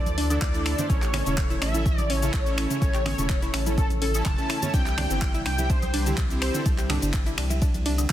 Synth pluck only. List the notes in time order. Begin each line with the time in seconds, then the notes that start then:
0.18 D4 D5
0.30 D3 D4
0.78 D3 D4
0.90 C#4 C#5
1.02 G4 G5
1.14 C#4 C#5
1.26 C#3 C#4
1.50 E4 E5
1.62 C#4 C#5
1.74 E4 E5
1.86 C#4 C#5
2.10 C#4 C#5
2.22 C#3 C#4
2.70 C#3 C#4
2.82 C#4 C#5
2.94 G4 G5
3.06 C#4 C#5
3.18 C#3 C#4
3.42 E4 E5
3.54 C#4 C#5
3.66 E4 E5
3.78 C#4 C#5
4.02 C#4 C#5
4.26 C#3 C#4
4.38 A4 A5
4.50 E4 E5
4.74 D4 D5
4.86 G4 G5
4.98 D4 D5
5.10 D3 D4
5.34 E4 E5
5.46 D4 D5
5.58 E4 E5
5.70 D4 D5
5.94 D4 D5
6.06 D3 D4
6.54 D3 D4
6.66 D4 D5
6.78 G4 G5
6.90 D4 D5
7.02 D3 D4
7.26 E4 E5
7.38 D4 D5
7.50 E4 E5
7.62 D4 D5
7.86 D4 D5
7.98 D3 D4